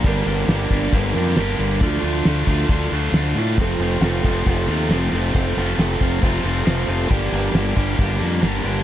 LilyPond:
<<
  \new Staff \with { instrumentName = "Twelve-string acoustic guitar" } { \time 4/4 \key g \minor \tempo 4 = 136 <g, d g bes d' bes'>4 <g, d g bes d' bes'>4 <g bes d' bes'>8 <g bes d' bes'>8 <g, d g bes d' bes'>8 <g bes d' bes'>8 | <d f d' f' a'>4 <d f d' f' a'>4 <f d' f' a'>8 <d' a'>8 <d f d' f' a'>8 <d' f' a'>8 | <f c' f' a'>4 <f c' f' a'>4 <f c' f' a'>8 <c' a'>8 <f c' f' a'>8 <c' f' a'>8 | <f c' f' a'>4 <f c' f' a'>4 <f c' f' a'>8 <c' f' a'>8 <f c' f' a'>8 <c' f' a'>8 |
<g, d g bes d' g'>4 <g, d g bes d' g'>4 <g bes d' g'>8 <g bes d' g'>8 <g, d g bes d' g'>8 <g bes d' g'>8 | }
  \new Staff \with { instrumentName = "Distorted electric guitar" } { \time 4/4 \key g \minor <g, d g bes d' g'>8 <g, d g bes d' g'>8 <g, d g bes d' g'>8 <g, d g bes d' g'>8 <g, d g bes d' g'>8 <g, d g bes d' g'>8 <g, d g bes d' g'>8 <g, d g bes d' g'>8 | <d a d' f'>8 <d a d' f'>8 <d a d' f'>8 <d a d' f'>8 <d a d' f'>8 <d a d' f'>8 <d a d' f'>8 <d a d' f'>8 | <f, c f a c' f'>8 <f, c f a c' f'>8 <f, c f a c' f'>8 <f, c f a c' f'>8 <f, c f a c' f'>8 <f, c f a c' f'>8 <f, c f a c' f'>8 <f, c f a c' f'>8 | <f, c f a c' f'>8 <f, c f a c' f'>8 <f, c f a c' f'>8 <f, c f a c' f'>8 <f, c f a c' f'>8 <f, c f a c' f'>8 <f, c f a c' f'>8 <f, c f a c' f'>8 |
<g, d g bes d' g'>8 <g, d g bes d' g'>8 <g, d g bes d' g'>8 <g, d g bes d' g'>8 <g, d g bes d' g'>8 <g, d g bes d' g'>8 <g, d g bes d' g'>8 <g, d g bes d' g'>8 | }
  \new Staff \with { instrumentName = "Fingered electric bass" } { \clef bass \time 4/4 \key g \minor g,,8 g,,8 g,,8 g,,8 g,,8 f,8 g,,8 g,,8 | d,8 d,8 d,8 d,8 d,8 d,8 d,8 a,8 | f,,8 f,,8 f,,8 f,,8 f,,8 ees,8 f,,8 f,,8 | f,,8 f,,8 f,,8 f,,8 f,,8 f,,8 f,,8 f,,8 |
g,,8 g,,8 g,,8 g,,8 g,,8 f,8 g,,8 g,,8 | }
  \new DrumStaff \with { instrumentName = "Drums" } \drummode { \time 4/4 <hh bd>8 hh8 <hh sn>8 <hh bd>8 <hh bd>8 hh16 sn16 <hh sn>8 hh8 | <hh bd>8 hh8 <hh sn>8 <hh bd>8 <hh bd>8 hh8 <hh sn>8 hh8 | <hh bd>8 hh8 <hh sn>8 <hh bd>8 <hh bd>8 hh8 <hh sn>8 hh8 | <hh bd>8 hh8 <hh sn>8 <hh bd>8 <hh bd>8 hh8 <hh sn>8 hh8 |
<hh bd>8 hh8 <hh sn>8 <hh bd>8 <hh bd>8 hh8 <hh sn>8 hh8 | }
>>